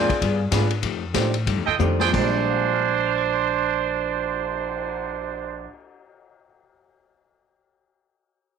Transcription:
Already playing: hollow-body jazz guitar A#2 G#3 C4 D4, saxophone section C4 F4 G#4 D5, trumpet section D4 A#4 C5 G#5
0.10 muted upright bass stroke, kick, ride
0.22 upright bass G2, hollow-body jazz guitar G3 B3 F4 G#4, kick, ride
0.51 upright bass G#2, hollow-body jazz guitar G3 B3 F4 G#4, grand piano D4 F4 G#4 B4, kick, snare, hi-hat pedal, ride
0.71 ride
0.82 upright bass F2, hollow-body jazz guitar F3 A3 D#4 G4, kick, ride
1.14 upright bass A2, hollow-body jazz guitar F3 A3 D#4 G4, grand piano A3 D4 G4 C5, kick, snare, hi-hat pedal, ride
1.34 ride
1.46 upright bass G2, hollow-body jazz guitar F3 A3 D#4 G4, kick, ride
1.57 upright bass F2
1.66 upright bass D#2, trumpet section F4 A4 D#5 G5
1.79 upright bass F2, hollow-body jazz guitar F3 A3 D#4 G4, grand piano A3 D4 G4 C5, hi-hat pedal, mid tom
2.00 trumpet section D4 G#4 C5 G5, snare
2.08 grand piano A#2 G#3, hollow-body jazz guitar A#2
2.13 upright bass A#1, grand piano G3 C4, hollow-body jazz guitar G#3, trumpet section D4 C5, kick, crash
2.18 hollow-body jazz guitar D4 G4, grand piano D5
2.35 cymbal swell
2.49 grand piano F5
2.56 grand piano G#5
2.64 grand piano C6
2.73 grand piano F6
2.83 grand piano G#6
2.94 grand piano C7
3.06 grand piano F7
3.18 grand piano G#7

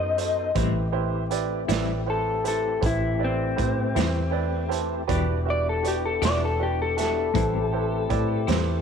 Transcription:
Already playing: fingered electric bass F#2, tonewheel organ B3 D#4 A4 C5, electric slide guitar D#5
0.17 upright piano D#4 F#4 A4 C5, closed hi-hat
0.54 fingered electric bass A1, clean electric guitar A2 G3 C4 E4, tonewheel organ A3 C4 E4 G4, upright piano E4 G4 B4 C5, kick, closed hi-hat
0.92 upright piano E4 G4 B4 C5
1.31 upright piano E4 G4 B4 D5, closed hi-hat
1.68 fingered electric bass A1, clean electric guitar A2 G3 C4 E4, upright piano E4 G4 B4 D5, snare, closed hi-hat
2.06 upright piano E4 G4 B4 C5, electric slide guitar A4
2.44 upright piano E4 G4 B4 C5, electric slide guitar A4, closed hi-hat
2.81 fingered electric bass A1, upright piano E4 G4 B4 C5, kick, closed hi-hat
2.86 electric slide guitar E4
3.19 upright piano E4 G4 B4 D5
3.25 electric slide guitar C4
3.56 fingered electric bass A2, upright piano E4 G4 B4 C5, kick, closed hi-hat
3.95 fingered electric bass E2, clean electric guitar G3 C4 E4, upright piano E4 G4 B4 C5, closed hi-hat
3.99 clean electric guitar A2, snare
4.30 upright piano E4 G4 B4 D5 G5
4.68 upright piano E4 G4 B4 C5 A5, closed hi-hat
5.07 fingered electric bass E1, clean electric guitar E3 B3 D4 G4, tonewheel organ B3 D4 E4 G4, upright piano F#4 G4 B4 D5, kick, closed hi-hat
5.45 upright piano F#4 G4 B4 E5
5.50 electric slide guitar D5
5.69 electric slide guitar A4
5.83 upright piano F#4 G4 B4 D5, closed hi-hat
5.88 electric slide guitar G4
6.06 electric slide guitar A4
6.22 fingered electric bass E1, clean electric guitar E3 B3 D4 G4, upright piano F#4 G4 B4 E5, electric slide guitar D5, snare, closed hi-hat
6.45 electric slide guitar A4
6.59 upright piano F#4 G4 B4 D5, electric slide guitar G4
6.82 electric slide guitar A4
6.97 upright piano F#4 G4 B4 E5, electric slide guitar A4, snare, closed hi-hat
7.34 fingered electric bass A1, clean electric guitar A2 G3 C4 E4, tonewheel organ A3 C4 E4 G4, upright piano E4 G4 B4 C5, kick, closed hi-hat
7.72 upright piano E4 G4 B4 C5
8.09 fingered electric bass A2, upright piano E4 G4 B4 D5, kick, closed hi-hat
8.47 fingered electric bass E2, clean electric guitar A2 G3 C4 E4, upright piano E4 G4 B4 C5, snare, closed hi-hat

